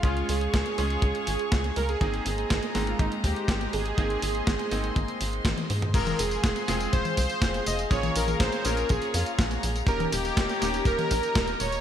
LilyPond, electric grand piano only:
\new Staff \with { instrumentName = "Electric grand piano" } { \time 4/4 \key f \minor \tempo 4 = 122 <aes des' f' aes'>4. <aes des' f' aes'>2~ <aes des' f' aes'>8 | <bes c' ees' aes'>4. <aes bes c' ees'>2~ <aes bes c' ees'>8 | <bes c' ees' aes'>4. <bes c' ees' aes'>2~ <bes c' ees' aes'>8 | <aes c' f' aes'>4. <aes c' f' aes'>2~ <aes c' f' aes'>8 |
<bes des' f' aes'>4. <bes des' f' aes'>2~ <bes des' f' aes'>8 | <bes des' ees' g'>4. <bes des' ees' g'>2~ <bes des' ees' g'>8 | }